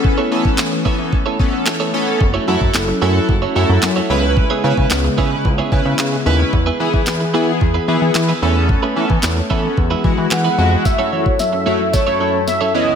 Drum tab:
CP |----x-------x---|----x-------x---|----x-------x---|----x-------x---|
SD |----o-------o---|----o-------o---|----o-------o---|----o-------o---|
BD |o--o--o-o-o-----|o--o----o-------|o--o--o-o-o-----|o--o----o-------|

CP |----x-------x---|----------------|
SD |----o-------o---|o---o---o---o---|
BD |o--o--o-o-o-----|o--o----o-------|